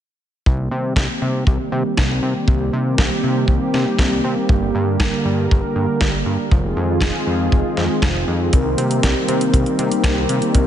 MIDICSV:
0, 0, Header, 1, 5, 480
1, 0, Start_track
1, 0, Key_signature, -3, "minor"
1, 0, Tempo, 504202
1, 439, Time_signature, 4, 2, 24, 8
1, 10157, End_track
2, 0, Start_track
2, 0, Title_t, "Analog polysynth"
2, 0, Program_c, 0, 90
2, 8118, Note_on_c, 0, 63, 84
2, 8118, Note_on_c, 0, 67, 87
2, 8118, Note_on_c, 0, 70, 99
2, 8119, Note_on_c, 0, 60, 92
2, 10157, Note_off_c, 0, 60, 0
2, 10157, Note_off_c, 0, 63, 0
2, 10157, Note_off_c, 0, 67, 0
2, 10157, Note_off_c, 0, 70, 0
2, 10157, End_track
3, 0, Start_track
3, 0, Title_t, "Analog synth pad"
3, 0, Program_c, 1, 89
3, 439, Note_on_c, 1, 55, 70
3, 439, Note_on_c, 1, 60, 71
3, 439, Note_on_c, 1, 67, 83
3, 440, Note_on_c, 1, 51, 75
3, 440, Note_on_c, 1, 58, 72
3, 4241, Note_off_c, 1, 51, 0
3, 4241, Note_off_c, 1, 60, 0
3, 4279, Note_on_c, 1, 50, 75
3, 4279, Note_on_c, 1, 70, 86
3, 6161, Note_off_c, 1, 55, 0
3, 6161, Note_off_c, 1, 58, 0
3, 6161, Note_off_c, 1, 67, 0
3, 6180, Note_off_c, 1, 50, 0
3, 6180, Note_off_c, 1, 70, 0
3, 6200, Note_on_c, 1, 51, 77
3, 6200, Note_on_c, 1, 56, 72
3, 6200, Note_on_c, 1, 60, 70
3, 6200, Note_on_c, 1, 65, 73
3, 6200, Note_on_c, 1, 68, 87
3, 8100, Note_off_c, 1, 56, 0
3, 8100, Note_off_c, 1, 65, 0
3, 8100, Note_off_c, 1, 68, 0
3, 8121, Note_on_c, 1, 55, 72
3, 8121, Note_on_c, 1, 58, 72
3, 8121, Note_on_c, 1, 67, 84
3, 10157, Note_off_c, 1, 51, 0
3, 10157, Note_off_c, 1, 55, 0
3, 10157, Note_off_c, 1, 58, 0
3, 10157, Note_off_c, 1, 60, 0
3, 10157, Note_off_c, 1, 67, 0
3, 10157, End_track
4, 0, Start_track
4, 0, Title_t, "Analog synth bass"
4, 0, Program_c, 2, 38
4, 440, Note_on_c, 2, 36, 97
4, 653, Note_off_c, 2, 36, 0
4, 680, Note_on_c, 2, 48, 98
4, 892, Note_off_c, 2, 48, 0
4, 914, Note_on_c, 2, 36, 96
4, 1023, Note_off_c, 2, 36, 0
4, 1160, Note_on_c, 2, 48, 93
4, 1372, Note_off_c, 2, 48, 0
4, 1397, Note_on_c, 2, 36, 100
4, 1504, Note_off_c, 2, 36, 0
4, 1639, Note_on_c, 2, 48, 101
4, 1745, Note_off_c, 2, 48, 0
4, 1884, Note_on_c, 2, 36, 97
4, 2095, Note_off_c, 2, 36, 0
4, 2119, Note_on_c, 2, 48, 95
4, 2226, Note_off_c, 2, 48, 0
4, 2357, Note_on_c, 2, 36, 95
4, 2571, Note_off_c, 2, 36, 0
4, 2599, Note_on_c, 2, 48, 102
4, 2812, Note_off_c, 2, 48, 0
4, 2839, Note_on_c, 2, 36, 95
4, 2945, Note_off_c, 2, 36, 0
4, 3079, Note_on_c, 2, 48, 98
4, 3292, Note_off_c, 2, 48, 0
4, 3311, Note_on_c, 2, 36, 98
4, 3422, Note_off_c, 2, 36, 0
4, 3558, Note_on_c, 2, 48, 101
4, 3665, Note_off_c, 2, 48, 0
4, 3794, Note_on_c, 2, 36, 95
4, 4009, Note_off_c, 2, 36, 0
4, 4039, Note_on_c, 2, 48, 94
4, 4146, Note_off_c, 2, 48, 0
4, 4276, Note_on_c, 2, 31, 94
4, 4491, Note_off_c, 2, 31, 0
4, 4520, Note_on_c, 2, 43, 103
4, 4732, Note_off_c, 2, 43, 0
4, 4757, Note_on_c, 2, 31, 95
4, 4865, Note_off_c, 2, 31, 0
4, 5000, Note_on_c, 2, 43, 96
4, 5212, Note_off_c, 2, 43, 0
4, 5249, Note_on_c, 2, 31, 102
4, 5351, Note_off_c, 2, 31, 0
4, 5480, Note_on_c, 2, 43, 97
4, 5586, Note_off_c, 2, 43, 0
4, 5723, Note_on_c, 2, 31, 97
4, 5934, Note_off_c, 2, 31, 0
4, 5959, Note_on_c, 2, 43, 97
4, 6065, Note_off_c, 2, 43, 0
4, 6203, Note_on_c, 2, 29, 96
4, 6414, Note_off_c, 2, 29, 0
4, 6439, Note_on_c, 2, 41, 100
4, 6652, Note_off_c, 2, 41, 0
4, 6669, Note_on_c, 2, 29, 94
4, 6781, Note_off_c, 2, 29, 0
4, 6919, Note_on_c, 2, 41, 97
4, 7132, Note_off_c, 2, 41, 0
4, 7162, Note_on_c, 2, 29, 97
4, 7267, Note_off_c, 2, 29, 0
4, 7399, Note_on_c, 2, 41, 96
4, 7505, Note_off_c, 2, 41, 0
4, 7636, Note_on_c, 2, 29, 92
4, 7851, Note_off_c, 2, 29, 0
4, 7880, Note_on_c, 2, 41, 99
4, 8093, Note_off_c, 2, 41, 0
4, 8122, Note_on_c, 2, 36, 97
4, 8334, Note_off_c, 2, 36, 0
4, 8359, Note_on_c, 2, 48, 98
4, 8572, Note_off_c, 2, 48, 0
4, 8600, Note_on_c, 2, 36, 96
4, 8706, Note_off_c, 2, 36, 0
4, 8839, Note_on_c, 2, 48, 95
4, 9052, Note_off_c, 2, 48, 0
4, 9078, Note_on_c, 2, 36, 102
4, 9185, Note_off_c, 2, 36, 0
4, 9319, Note_on_c, 2, 48, 97
4, 9426, Note_off_c, 2, 48, 0
4, 9555, Note_on_c, 2, 36, 96
4, 9770, Note_off_c, 2, 36, 0
4, 9799, Note_on_c, 2, 48, 96
4, 9905, Note_off_c, 2, 48, 0
4, 10040, Note_on_c, 2, 36, 98
4, 10157, Note_off_c, 2, 36, 0
4, 10157, End_track
5, 0, Start_track
5, 0, Title_t, "Drums"
5, 440, Note_on_c, 9, 36, 105
5, 536, Note_off_c, 9, 36, 0
5, 914, Note_on_c, 9, 36, 98
5, 919, Note_on_c, 9, 38, 111
5, 1009, Note_off_c, 9, 36, 0
5, 1014, Note_off_c, 9, 38, 0
5, 1397, Note_on_c, 9, 36, 122
5, 1492, Note_off_c, 9, 36, 0
5, 1879, Note_on_c, 9, 38, 113
5, 1884, Note_on_c, 9, 36, 98
5, 1974, Note_off_c, 9, 38, 0
5, 1979, Note_off_c, 9, 36, 0
5, 2357, Note_on_c, 9, 36, 123
5, 2453, Note_off_c, 9, 36, 0
5, 2839, Note_on_c, 9, 36, 107
5, 2839, Note_on_c, 9, 38, 114
5, 2934, Note_off_c, 9, 36, 0
5, 2935, Note_off_c, 9, 38, 0
5, 3311, Note_on_c, 9, 36, 111
5, 3406, Note_off_c, 9, 36, 0
5, 3559, Note_on_c, 9, 38, 58
5, 3654, Note_off_c, 9, 38, 0
5, 3794, Note_on_c, 9, 36, 98
5, 3799, Note_on_c, 9, 38, 115
5, 3889, Note_off_c, 9, 36, 0
5, 3894, Note_off_c, 9, 38, 0
5, 4276, Note_on_c, 9, 36, 127
5, 4371, Note_off_c, 9, 36, 0
5, 4757, Note_on_c, 9, 36, 112
5, 4759, Note_on_c, 9, 38, 117
5, 4853, Note_off_c, 9, 36, 0
5, 4854, Note_off_c, 9, 38, 0
5, 5249, Note_on_c, 9, 36, 121
5, 5344, Note_off_c, 9, 36, 0
5, 5719, Note_on_c, 9, 38, 118
5, 5723, Note_on_c, 9, 36, 106
5, 5814, Note_off_c, 9, 38, 0
5, 5818, Note_off_c, 9, 36, 0
5, 6202, Note_on_c, 9, 36, 124
5, 6297, Note_off_c, 9, 36, 0
5, 6669, Note_on_c, 9, 36, 93
5, 6679, Note_on_c, 9, 38, 119
5, 6765, Note_off_c, 9, 36, 0
5, 6774, Note_off_c, 9, 38, 0
5, 7161, Note_on_c, 9, 36, 113
5, 7256, Note_off_c, 9, 36, 0
5, 7399, Note_on_c, 9, 38, 60
5, 7495, Note_off_c, 9, 38, 0
5, 7636, Note_on_c, 9, 36, 99
5, 7639, Note_on_c, 9, 38, 113
5, 7731, Note_off_c, 9, 36, 0
5, 7735, Note_off_c, 9, 38, 0
5, 8119, Note_on_c, 9, 42, 74
5, 8122, Note_on_c, 9, 36, 118
5, 8215, Note_off_c, 9, 42, 0
5, 8217, Note_off_c, 9, 36, 0
5, 8360, Note_on_c, 9, 42, 76
5, 8455, Note_off_c, 9, 42, 0
5, 8480, Note_on_c, 9, 42, 49
5, 8575, Note_off_c, 9, 42, 0
5, 8600, Note_on_c, 9, 36, 97
5, 8600, Note_on_c, 9, 38, 113
5, 8600, Note_on_c, 9, 42, 73
5, 8695, Note_off_c, 9, 36, 0
5, 8695, Note_off_c, 9, 38, 0
5, 8695, Note_off_c, 9, 42, 0
5, 8839, Note_on_c, 9, 42, 74
5, 8934, Note_off_c, 9, 42, 0
5, 8959, Note_on_c, 9, 42, 50
5, 9054, Note_off_c, 9, 42, 0
5, 9078, Note_on_c, 9, 36, 115
5, 9080, Note_on_c, 9, 42, 71
5, 9173, Note_off_c, 9, 36, 0
5, 9175, Note_off_c, 9, 42, 0
5, 9199, Note_on_c, 9, 42, 34
5, 9294, Note_off_c, 9, 42, 0
5, 9319, Note_on_c, 9, 42, 73
5, 9414, Note_off_c, 9, 42, 0
5, 9439, Note_on_c, 9, 42, 47
5, 9534, Note_off_c, 9, 42, 0
5, 9554, Note_on_c, 9, 36, 104
5, 9559, Note_on_c, 9, 38, 115
5, 9559, Note_on_c, 9, 42, 71
5, 9650, Note_off_c, 9, 36, 0
5, 9654, Note_off_c, 9, 38, 0
5, 9654, Note_off_c, 9, 42, 0
5, 9798, Note_on_c, 9, 42, 71
5, 9894, Note_off_c, 9, 42, 0
5, 9919, Note_on_c, 9, 42, 49
5, 10014, Note_off_c, 9, 42, 0
5, 10039, Note_on_c, 9, 42, 74
5, 10040, Note_on_c, 9, 36, 107
5, 10134, Note_off_c, 9, 42, 0
5, 10135, Note_off_c, 9, 36, 0
5, 10157, End_track
0, 0, End_of_file